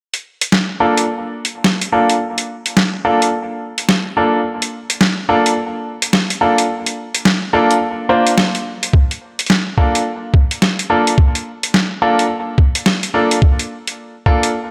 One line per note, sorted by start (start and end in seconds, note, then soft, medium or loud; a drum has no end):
0.14 closed hi-hat soft
0.41 closed hi-hat medium
0.52 snare loud
0.80 1.03 A#3 medium
0.80 1.03 D4 medium
0.80 1.03 F4 medium
0.80 1.03 A4 medium
0.97 closed hi-hat medium
1.45 closed hi-hat medium
1.64 snare loud
1.81 closed hi-hat soft
1.92 2.15 A#3 medium
1.92 2.15 D4 medium
1.92 2.15 F4 medium
1.92 2.15 A4 medium
2.10 closed hi-hat medium
2.38 closed hi-hat soft
2.66 closed hi-hat medium
2.77 snare loud
3.05 3.27 A#3 medium
3.05 3.27 D4 medium
3.05 3.27 F4 medium
3.05 3.27 A4 loud
3.22 closed hi-hat medium
3.78 closed hi-hat medium
3.89 snare loud
4.17 4.39 A#3 medium
4.17 4.39 D4 medium
4.17 4.39 F4 medium
4.17 4.39 A4 medium
4.62 closed hi-hat soft
4.90 closed hi-hat medium
5.01 snare loud
5.29 5.51 A#3 medium
5.29 5.51 D4 medium
5.29 5.51 F4 medium
5.29 5.51 A4 loud
5.46 closed hi-hat medium
6.02 closed hi-hat medium
6.13 snare loud
6.30 closed hi-hat soft
6.41 6.64 A#3 medium
6.41 6.64 D4 medium
6.41 6.64 F4 medium
6.41 6.64 A4 medium
6.58 closed hi-hat medium
6.86 closed hi-hat soft
7.15 closed hi-hat medium
7.25 snare loud
7.53 7.76 A#3 medium
7.53 7.76 D4 medium
7.53 7.76 F4 medium
7.53 7.76 A4 loud
7.71 closed hi-hat medium
8.09 8.32 A#3 medium
8.09 8.32 D4 medium
8.09 8.32 F4 medium
8.09 8.32 C5 medium
8.27 closed hi-hat medium
8.38 snare loud
8.55 closed hi-hat soft
8.83 closed hi-hat medium
8.93 kick loud
9.11 closed hi-hat soft
9.39 closed hi-hat medium
9.41 closed hi-hat soft
9.46 snare loud
9.46 closed hi-hat soft
9.78 10.00 A#3 medium
9.78 10.00 D4 medium
9.78 10.00 F4 medium
9.78 10.00 A4 loud
9.78 kick medium
9.95 closed hi-hat medium
10.34 kick loud
10.51 closed hi-hat medium
10.62 snare loud
10.79 closed hi-hat soft
10.90 11.12 A#3 medium
10.90 11.12 D4 medium
10.90 11.12 F4 medium
10.90 11.12 A4 medium
11.07 closed hi-hat medium
11.18 kick loud
11.35 closed hi-hat soft
11.63 closed hi-hat medium
11.74 snare loud
12.02 12.24 A#3 medium
12.02 12.24 D4 medium
12.02 12.24 F4 medium
12.02 12.24 A4 loud
12.19 closed hi-hat medium
12.58 kick medium
12.75 closed hi-hat medium
12.86 snare loud
13.03 closed hi-hat soft
13.14 13.37 A#3 medium
13.14 13.37 D4 medium
13.14 13.37 F4 medium
13.14 13.37 A4 medium
13.31 closed hi-hat medium
13.42 kick loud
13.59 closed hi-hat soft
13.87 closed hi-hat medium
14.26 14.49 A#3 medium
14.26 14.49 D4 medium
14.26 14.49 F4 medium
14.26 14.49 A4 loud
14.26 kick medium
14.43 closed hi-hat medium